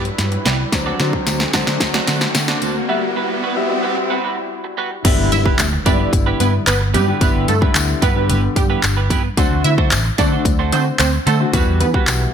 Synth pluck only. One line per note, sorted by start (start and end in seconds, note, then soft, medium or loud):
5.32 5.42 E4 medium
5.32 5.42 E5 medium
5.86 6.24 D4 medium
5.86 6.24 D5 medium
6.40 6.51 B3 medium
6.40 6.50 B4 medium
6.67 6.78 B3 medium
6.67 6.77 B4 loud
6.94 7.05 G3 medium
6.94 7.04 G4 medium
7.48 7.59 A3 medium
7.48 7.58 A4 medium
8.02 8.41 B3 medium
8.02 8.40 B4 medium
8.56 8.67 G3 medium
8.56 8.66 G4 medium
9.64 9.75 E4 medium
9.64 9.74 E5 medium
10.18 10.57 D4 medium
10.18 10.56 D5 medium
10.73 10.83 C4 medium
10.73 10.82 C5 medium
10.99 11.10 C4 medium
10.99 11.09 C5 medium
11.27 11.37 A3 medium
11.27 11.37 A4 medium
11.81 11.91 B3 medium
11.81 11.90 B4 medium